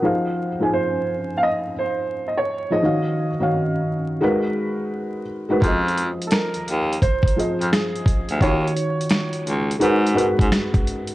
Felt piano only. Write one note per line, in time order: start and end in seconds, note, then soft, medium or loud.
0.00 0.47 F3 medium
0.00 0.48 D#4 medium
0.00 0.48 G#4 medium
0.00 0.26 A#4 medium
0.00 0.26 F#5 medium
0.04 0.49 C5 medium
0.04 0.49 F5 medium
0.60 1.71 F3 medium
0.60 1.71 D#4 medium
0.60 1.71 G#4 medium
0.60 1.72 C5 medium
0.60 1.72 G#5 medium
2.70 2.80 F3 medium
2.70 2.81 D#4 medium
2.70 2.81 G#4 medium
2.70 2.82 C5 medium
2.70 2.82 D#5 medium
2.82 3.27 D#3 medium
2.82 3.27 D#4 medium
2.82 3.28 F#4 medium
2.82 3.28 C#5 medium
2.82 3.28 F5 medium
3.39 4.22 D#3 medium
3.39 4.20 D#4 medium
3.39 4.21 F#4 medium
3.39 4.23 C#5 medium
3.39 4.24 F5 medium
4.21 5.22 G#3 medium
4.21 5.22 D#4 medium
4.21 5.23 F#4 medium
4.21 5.23 A#4 medium
4.21 5.23 B4 medium
5.49 5.59 G#3 medium
5.49 5.60 D#4 medium
5.49 5.60 F#4 medium
5.49 5.60 A#4 medium
5.49 5.61 B4 medium
5.64 6.77 F3 medium
5.64 6.78 F4 medium
5.64 6.78 G#4 medium
5.64 6.79 C5 medium
5.64 6.79 D#5 medium
7.36 8.25 F3 medium
7.36 8.25 F4 medium
7.36 8.26 G#4 medium
7.36 8.26 C5 medium
7.36 8.27 D#5 medium
8.41 9.55 D#3 medium
8.41 9.56 D#4 medium
8.41 9.56 F4 medium
8.41 9.57 F#4 medium
8.41 9.57 C#5 medium
9.79 10.10 G#3 medium
9.79 10.11 D#4 medium
9.79 10.11 F#4 medium
9.79 10.11 A#4 medium
9.79 10.12 B4 loud
10.14 11.03 G#3 medium
10.14 11.04 D#4 medium
10.14 11.04 F#4 medium
10.14 11.04 A#4 medium
10.14 11.05 B4 loud